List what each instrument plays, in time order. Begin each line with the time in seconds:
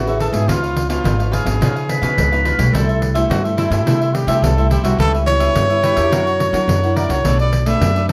Already playing: upright bass A1, nylon-string guitar E3, trumpet F#4
0.06 nylon-string guitar C#4 G#4 B4, cavaquinho C#5 E5 A5, pandeiro
0.19 cavaquinho G#4 C#5 E5 A5, trumpet A4, pandeiro
0.32 upright bass G#2, nylon-string guitar F3 B3 D#4, trumpet G#4, cavaquinho C#5 E5 A5, pandeiro
0.48 upright bass C#2, nylon-string guitar C#3, cavaquinho F4 B4 C#5 F5, trumpet F4, pandeiro
0.63 cavaquinho B4 C#5 F5, pandeiro
0.76 muted cavaquinho stroke, pandeiro
0.89 nylon-string guitar F3 B3 D#4, trumpet F4, cavaquinho B4 C#5 F5, pandeiro
1.04 upright bass G#1, nylon-string guitar G#2, pandeiro
1.19 nylon-string guitar F3 B3 D#4, cavaquinho B4 C#5 F5, pandeiro
1.31 cavaquinho F4 B4 C#5 F5, trumpet G#4, pandeiro
1.45 upright bass G#1, nylon-string guitar F3 B3 D#4, cavaquinho B4 C#5 F5, pandeiro
1.61 nylon-string guitar C#3 F3 B3 D#4, upright bass C#3, cavaquinho F4 B4 C#5 F5, pandeiro
1.75 cavaquinho B4 C#5 F5, pandeiro
1.89 clarinet B4, muted cavaquinho stroke, pandeiro
2.01 upright bass C#3, nylon-string guitar F3 B3 D#4, cavaquinho B4 C#5 F5, pandeiro
2.17 upright bass C#2, nylon-string guitar G#2, pandeiro
2.32 nylon-string guitar F3 B3 D#4, cavaquinho B4 C#5 F5, pandeiro
2.45 cavaquinho F4 B4 C#5 F5, pandeiro
2.58 upright bass B1, nylon-string guitar G3 A3 E4, cavaquinho B4 C#5 F5, pandeiro
2.73 upright bass C2, nylon-string guitar C3, cavaquinho E4 A4 C5 E5, clarinet A4, pandeiro
2.88 cavaquinho A4 C5 E5, pandeiro
3.01 muted cavaquinho stroke, pandeiro
3.14 nylon-string guitar G3 A3 E4, cavaquinho A4 C5 E5, pandeiro
3.30 upright bass G2, nylon-string guitar G2, trumpet F#4, pandeiro
3.44 nylon-string guitar G3 A3 E4, cavaquinho A4 C5 E5, pandeiro
3.57 cavaquinho E4 A4 C5 E5, trumpet E4, pandeiro
3.70 upright bass G2, nylon-string guitar G3 A3 E4, cavaquinho A4 C5 E5, pandeiro
3.86 upright bass C3, nylon-string guitar C3 G3 A3 E4, cavaquinho E4 A4 C5 E5, pandeiro
4.01 cavaquinho A4 C5 E5, pandeiro
4.14 trumpet G4, muted cavaquinho stroke, pandeiro
4.27 upright bass C3, nylon-string guitar G3 A3 E4, cavaquinho A4 C5 E5, pandeiro
4.42 upright bass C2, nylon-string guitar G2, trumpet A4, pandeiro
4.58 nylon-string guitar G3 A3 E4, cavaquinho A4 C5 E5, pandeiro
4.70 cavaquinho E4 A4 C5 E5, trumpet G4, pandeiro
4.83 upright bass C2, nylon-string guitar G3 B3 E4, trumpet F#4, cavaquinho A4 C5 E5, pandeiro
4.98 upright bass C#2, nylon-string guitar C#3, cavaquinho G4 B4 C#5 E5, trumpet A4, pandeiro
5.13 cavaquinho B4 C#5 E5, pandeiro
5.26 nylon-string guitar G3 B3 E4, trumpet C#5, muted cavaquinho stroke, pandeiro
5.39 cavaquinho B4 C#5 E5, pandeiro
5.55 upright bass G2, pandeiro
5.69 nylon-string guitar G3 B3 E4, cavaquinho B4 C#5 E5, pandeiro
5.82 clarinet E4, cavaquinho G4 B4 C#5 E5, pandeiro
5.96 upright bass E2, nylon-string guitar D4 E4 A#4, clarinet G4, cavaquinho B4 C#5 E5, pandeiro
6.11 upright bass F#2, nylon-string guitar F#3, cavaquinho E4 A#4 C#5 F#5, clarinet F#4, pandeiro
6.26 cavaquinho A#4 C#5 F#5, pandeiro
6.40 muted cavaquinho stroke, pandeiro
6.53 upright bass F#3, nylon-string guitar D4 E4 A#4, cavaquinho A#4 C#5 F#5, pandeiro
6.68 upright bass F#2, pandeiro
6.83 nylon-string guitar D4 E4 A#4, cavaquinho A#4 C#5 F#5, pandeiro
6.95 cavaquinho E4 A#4 C#5 F#5, trumpet D5, pandeiro
7.09 upright bass C#2, cavaquinho A#4 C#5 F#5, trumpet C#5, pandeiro
7.24 upright bass B1, nylon-string guitar B2 A3 D4 F#4, cavaquinho D4 A4 B4 D5, pandeiro
7.39 cavaquinho A4 B4 D5, trumpet D5, pandeiro
7.53 muted cavaquinho stroke, pandeiro
7.66 nylon-string guitar A3 D4 F#4, cavaquinho A4 B4 D5, trumpet E5, pandeiro
7.81 upright bass F#2, nylon-string guitar F#3, pandeiro
7.95 nylon-string guitar A3 D4 F#4, cavaquinho A4 B4 D5, pandeiro